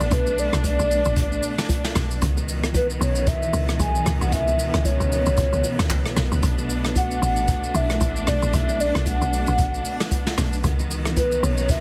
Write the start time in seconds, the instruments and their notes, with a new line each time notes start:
Already playing: string section B2 A3 B3 D4, soft synth lead D5, downlifter
0.00 log drum bass A1, shaker
0.11 log drum bass B1, soft synth lead B4, kick, hi-hat pedal, low conga, shaker
0.27 low bongo, shaker
0.38 soft synth lead D5, open hi-hat, shaker
0.53 log drum bass B1, cross-stick, low bongo, shaker
0.64 soft synth lead D5, kick, hi-hat pedal, high bongo, shaker
0.79 log drum bass B1, shaker
0.91 open hi-hat, shaker
1.05 log drum bass A1, shaker
1.16 kick, hi-hat pedal, low conga, shaker
1.32 shaker
1.43 open hi-hat, shaker
1.58 cross-stick, snare, low bongo, shaker
1.69 kick, hi-hat pedal, high bongo, shaker
1.85 snare, shaker
1.95 log drum bass B1, cross-stick, snare, open hi-hat, low bongo, low conga, shaker
2.11 shaker
2.21 log drum bass C#2, string section D#3 E3 B3, kick, hi-hat pedal, low conga, shaker
2.37 low bongo, shaker
2.49 open hi-hat, shaker
2.63 cross-stick, low bongo, shaker
2.74 soft synth lead B4, kick, hi-hat pedal, high bongo, shaker
2.90 shaker
3.01 log drum bass B1, soft synth lead C#5, open hi-hat, shaker
3.15 shaker
3.27 soft synth lead E5, kick, hi-hat pedal, low conga, shaker
3.43 shaker
3.53 log drum bass C#2, open hi-hat, shaker
3.69 cross-stick, low bongo, shaker
3.79 log drum bass B1, soft synth lead G#5, kick, hi-hat pedal, high bongo, shaker
3.95 shaker
4.06 log drum bass C#2, cross-stick, open hi-hat, low bongo, low conga, shaker
4.21 log drum bass B1, soft synth lead F#5, shaker
4.32 log drum bass C#2, soft synth lead E5, kick, hi-hat pedal, low conga, shaker
4.48 low bongo, shaker
4.59 open hi-hat, shaker
4.74 log drum bass C#2, cross-stick, low bongo, shaker
4.85 soft synth lead C#5, kick, hi-hat pedal, high bongo, shaker
5.00 log drum bass C#2, shaker
5.12 open hi-hat, shaker
5.26 log drum bass B1, shaker
5.37 log drum bass C#2, kick, hi-hat pedal, low conga, shaker
5.53 log drum bass C#2, shaker
5.64 open hi-hat, high bongo, shaker
5.79 log drum bass D2, cross-stick, snare, high bongo, low bongo, shaker
5.90 log drum bass C#2, kick, clap, hi-hat pedal, high bongo, shaker
6.06 cross-stick, shaker
6.16 log drum bass B1, cross-stick, snare, open hi-hat, low bongo, low conga, shaker
6.32 log drum bass C#2, shaker
6.43 log drum bass B1, string section A3 D4, kick, hi-hat pedal, low conga, shaker
6.58 low bongo, shaker
6.70 open hi-hat, shaker
6.85 cross-stick, low bongo, shaker
6.96 soft synth lead F#5, kick, hi-hat pedal, high bongo, shaker
7.11 shaker
7.22 log drum bass A1, soft synth lead F#5, open hi-hat, shaker
7.36 shaker
7.48 kick, hi-hat pedal, low conga, shaker
7.64 shaker
7.74 log drum bass B1, soft synth lead E5, open hi-hat, shaker
7.90 cross-stick, low bongo, shaker
8.01 log drum bass A1, kick, hi-hat pedal, high bongo, shaker
8.16 shaker
8.27 log drum bass B1, soft synth lead D5, cross-stick, open hi-hat, low bongo, low conga, shaker
8.42 log drum bass A1, shaker
8.53 log drum bass B1, soft synth lead E5, kick, hi-hat pedal, low conga, shaker
8.69 low bongo, shaker
8.80 soft synth lead D5, open hi-hat, shaker
8.95 log drum bass B1, cross-stick, low bongo, shaker
9.06 soft synth lead F#5, kick, hi-hat pedal, high bongo, shaker
9.21 log drum bass B1, shaker
9.33 open hi-hat, shaker
9.47 log drum bass A1, shaker
9.58 kick, hi-hat pedal, low conga, shaker
9.74 shaker
9.85 open hi-hat, shaker
10.00 cross-stick, snare, low bongo, shaker
10.11 kick, hi-hat pedal, high bongo, shaker
10.27 snare, shaker
10.38 log drum bass B1, cross-stick, snare, open hi-hat, low bongo, low conga, shaker
10.53 shaker
10.64 log drum bass C#2, string section B2 D#3 E3 B3, kick, hi-hat pedal, low conga, shaker
10.79 low bongo, shaker
10.91 open hi-hat, shaker
11.05 cross-stick, low bongo, shaker
11.16 soft synth lead B4, kick, hi-hat pedal, high bongo, shaker
11.32 shaker
11.43 log drum bass B1, soft synth lead C#5, open hi-hat, shaker
11.58 shaker
11.69 soft synth lead E5, kick, hi-hat pedal, low conga, shaker